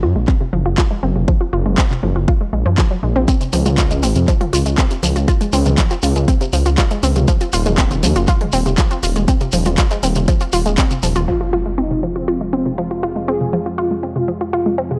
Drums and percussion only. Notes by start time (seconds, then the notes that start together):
0.28 kick, clap
0.78 kick, clap
1.28 kick
1.78 kick, clap
1.91 clap
2.28 kick
2.78 kick, clap
3.28 kick, closed hi-hat, shekere
3.41 closed hi-hat, shekere
3.53 open hi-hat, shekere
3.66 closed hi-hat, mid tom, shekere
3.78 kick, clap, closed hi-hat, shekere
3.91 closed hi-hat, shekere
4.03 open hi-hat, shekere
4.15 closed hi-hat, shekere
4.28 kick, clap, closed hi-hat, shekere
4.41 closed hi-hat, mid tom
4.53 open hi-hat, shekere
4.66 closed hi-hat, shekere
4.78 kick, clap, closed hi-hat, shekere
4.90 closed hi-hat, shekere
5.03 open hi-hat, shekere
5.16 closed hi-hat, shekere
5.28 kick, closed hi-hat, shekere
5.41 closed hi-hat, shekere
5.53 open hi-hat, shekere
5.65 closed hi-hat, mid tom, shekere
5.78 kick, clap, closed hi-hat, shekere
5.90 clap, closed hi-hat, shekere
6.02 open hi-hat, shekere
6.16 closed hi-hat, shekere
6.28 kick, closed hi-hat, shekere
6.41 closed hi-hat, shekere
6.53 open hi-hat, shekere
6.66 closed hi-hat, shekere
6.78 kick, clap, closed hi-hat, shekere
6.91 closed hi-hat, shekere
7.03 open hi-hat, shekere
7.16 closed hi-hat, mid tom, shekere
7.28 kick, closed hi-hat, shekere
7.41 closed hi-hat, shekere
7.53 open hi-hat, shekere
7.66 closed hi-hat, mid tom, shekere
7.78 kick, clap, closed hi-hat, shekere
7.91 closed hi-hat, shekere
8.03 open hi-hat, shekere
8.16 closed hi-hat, shekere
8.28 kick, clap, closed hi-hat, shekere
8.41 closed hi-hat, mid tom
8.52 open hi-hat, shekere
8.66 closed hi-hat, shekere
8.77 kick, clap, closed hi-hat, shekere
8.91 closed hi-hat, shekere
9.03 open hi-hat, shekere
9.16 closed hi-hat, shekere
9.28 kick, closed hi-hat, shekere
9.40 closed hi-hat, shekere
9.52 open hi-hat, shekere
9.65 closed hi-hat, mid tom, shekere
9.78 kick, clap, closed hi-hat, shekere
9.91 clap, closed hi-hat, shekere
10.03 open hi-hat, shekere
10.15 closed hi-hat, shekere
10.28 kick, closed hi-hat, shekere
10.40 closed hi-hat, shekere
10.53 open hi-hat, shekere
10.66 closed hi-hat, shekere
10.78 kick, clap, closed hi-hat, shekere
10.90 closed hi-hat, shekere
11.03 open hi-hat, shekere
11.15 closed hi-hat, mid tom, shekere